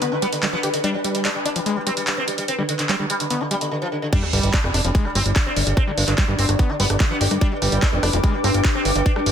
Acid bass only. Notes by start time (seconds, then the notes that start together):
0.02 B3
0.12 G4
0.22 G3
0.43 G3
0.53 F3
0.63 G4
0.84 G3
0.94 F3
1.04 G3
1.25 G#3
1.46 D4
1.56 F3
1.66 G#3
1.76 F3
1.87 G3
2.59 G3
2.89 G3
3.00 G3
3.30 B3
3.41 G4
3.51 G3
4.13 G3
4.23 F3
4.33 G3
4.54 G#3
4.74 D4
4.85 F3
4.95 G#3
5.05 F3
5.15 G3
5.87 G3
6.18 G3
6.28 G3
6.59 B3
6.69 G4
6.80 G3
7.00 G3
7.11 F3
7.21 G4
7.41 G3
7.52 F3
7.62 G3
7.82 G#3
8.03 D4
8.13 F3
8.24 G#3
8.34 F3
8.44 G3
9.16 G3